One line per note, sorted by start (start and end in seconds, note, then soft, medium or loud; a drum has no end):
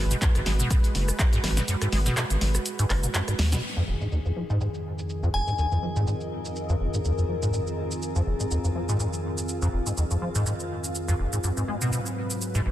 0.00 0.14 G#1 loud
0.00 3.59 G#3 medium
0.00 3.59 F#4 medium
0.00 3.59 B4 medium
0.11 0.17 B2 medium
0.11 closed hi-hat soft
0.11 shaker medium
0.22 0.29 F#2 medium
0.22 kick loud
0.22 clap loud
0.22 closed hi-hat medium
0.22 shaker medium
0.35 0.42 G#1 medium
0.35 0.41 G#2 medium
0.35 cross-stick medium
0.35 closed hi-hat medium
0.35 shaker soft
0.46 0.63 G#1 loud
0.46 0.54 G#3 medium
0.46 snare medium
0.46 open hi-hat loud
0.60 0.69 B2 loud
0.60 shaker medium
0.71 0.78 B2 medium
0.71 kick loud
0.71 cross-stick medium
0.71 closed hi-hat medium
0.71 shaker medium
0.84 closed hi-hat medium
0.84 shaker soft
0.95 1.11 F#1 medium
0.95 snare soft
0.95 open hi-hat loud
1.08 cross-stick medium
1.08 shaker medium
1.19 kick loud
1.19 clap loud
1.19 closed hi-hat medium
1.19 shaker medium
1.33 1.39 G#2 loud
1.33 closed hi-hat medium
1.33 shaker soft
1.44 1.60 G#1 loud
1.44 1.51 G#1 medium
1.44 cross-stick medium
1.44 snare medium
1.44 open hi-hat loud
1.57 1.63 B2 medium
1.57 snare medium
1.57 closed hi-hat soft
1.57 shaker medium
1.68 1.76 F#2 medium
1.68 closed hi-hat medium
1.68 shaker medium
1.82 1.88 G#2 medium
1.82 cross-stick medium
1.82 closed hi-hat medium
1.82 shaker soft
1.92 2.09 G#1 loud
1.92 2.00 G#3 medium
1.92 snare soft
1.92 open hi-hat loud
2.06 2.15 B2 loud
2.06 snare soft
2.06 closed hi-hat soft
2.06 shaker medium
2.17 2.24 B2 medium
2.17 cross-stick medium
2.17 clap loud
2.17 closed hi-hat medium
2.17 shaker medium
2.30 2.37 G#1 medium
2.30 closed hi-hat medium
2.30 shaker soft
2.41 2.58 G#1 loud
2.41 snare medium
2.41 open hi-hat loud
2.55 cross-stick medium
2.55 closed hi-hat soft
2.55 shaker medium
2.66 closed hi-hat medium
2.66 shaker medium
2.79 2.85 G#2 loud
2.79 closed hi-hat medium
2.79 shaker soft
2.90 3.06 F#1 loud
2.90 2.97 G#1 medium
2.90 cross-stick medium
2.90 clap medium
2.90 open hi-hat loud
3.04 3.10 B2 medium
3.04 closed hi-hat soft
3.04 shaker medium
3.14 3.22 F#2 medium
3.14 clap loud
3.14 closed hi-hat medium
3.14 shaker medium
3.28 3.34 G#2 medium
3.28 cross-stick medium
3.28 closed hi-hat medium
3.28 shaker soft
3.39 3.55 D#2 medium
3.39 3.46 G#3 medium
3.39 snare medium
3.39 open hi-hat loud
3.52 3.61 B2 loud
3.52 snare loud
3.52 shaker medium
3.63 11.40 F2 medium
3.63 11.40 D#3 medium
3.63 11.44 C4 medium
3.63 11.40 G#4 medium
3.63 crash medium
3.63 shaker medium
3.77 3.83 F2 loud
3.77 11.44 A#4 medium
3.77 shaker soft
3.88 3.95 F1 medium
3.88 11.44 F4 medium
3.88 7.82 D#5 medium
4.01 4.07 G#2 medium
4.01 shaker medium
4.12 4.19 D#2 medium
4.12 shaker medium
4.25 4.31 F2 medium
4.25 shaker soft
4.36 4.44 F3 medium
4.50 4.59 G#2 medium
4.50 shaker medium
4.61 4.68 G#2 medium
4.61 shaker soft
4.74 shaker soft
4.99 shaker medium
5.10 shaker medium
5.23 5.29 F2 loud
5.23 shaker soft
5.34 5.41 F1 medium
5.34 5.83 G#5 medium
5.47 5.53 G#2 medium
5.47 shaker medium
5.58 5.66 D#2 medium
5.58 shaker medium
5.72 5.78 F2 medium
5.72 shaker soft
5.83 5.90 F3 medium
5.96 6.05 G#2 loud
5.96 shaker medium
6.07 6.15 G#2 medium
6.07 shaker medium
6.21 shaker soft
6.45 shaker medium
6.56 shaker soft
6.69 6.75 F2 loud
6.69 shaker soft
6.80 6.88 F1 medium
6.94 7.00 G#2 medium
6.94 shaker medium
7.05 7.12 D#2 medium
7.05 shaker medium
7.18 7.24 F2 medium
7.18 shaker soft
7.29 7.36 F3 medium
7.42 7.51 G#2 loud
7.42 shaker medium
7.53 7.61 G#2 medium
7.53 shaker medium
7.67 12.66 F5 medium
7.67 shaker soft
7.91 shaker medium
8.02 shaker medium
8.16 8.22 F2 loud
8.16 shaker soft
8.27 8.34 F1 medium
8.40 8.46 G#2 medium
8.40 shaker medium
8.51 8.58 D#2 medium
8.51 shaker soft
8.64 8.70 F2 medium
8.64 shaker soft
8.75 8.83 F3 medium
8.89 8.98 G#2 loud
8.89 shaker medium
9.00 9.07 G#2 medium
9.00 shaker medium
9.13 shaker soft
9.38 shaker medium
9.49 shaker soft
9.62 9.68 F2 medium
9.62 shaker soft
9.73 9.80 F1 medium
9.86 9.92 G#2 medium
9.86 shaker medium
9.97 10.05 D#2 medium
9.97 shaker medium
10.11 10.17 F2 medium
10.11 shaker soft
10.22 10.29 F3 medium
10.35 10.44 G#2 loud
10.35 shaker medium
10.46 10.54 G#2 medium
10.46 shaker medium
10.60 shaker soft
10.84 shaker medium
10.95 shaker medium
11.08 11.14 F2 loud
11.08 shaker soft
11.19 11.27 F1 medium
11.33 11.39 G#2 medium
11.33 shaker medium
11.44 11.51 F#2 medium
11.44 12.71 G#2 medium
11.44 12.71 F#3 medium
11.44 12.71 G#3 medium
11.44 12.71 B4 medium
11.44 shaker medium
11.57 11.63 G#2 medium
11.57 shaker soft
11.66 11.76 G#3 medium
11.66 12.71 C#4 medium
11.73 12.71 F#4 medium
11.79 11.91 B2 loud
11.79 12.71 B4 medium
11.79 shaker medium
11.92 12.00 B2 medium
11.92 shaker medium
12.06 shaker soft
12.14 12.71 D#5 medium
12.30 shaker medium
12.41 shaker medium
12.55 12.61 G#2 loud
12.55 shaker soft
12.66 12.71 G#1 medium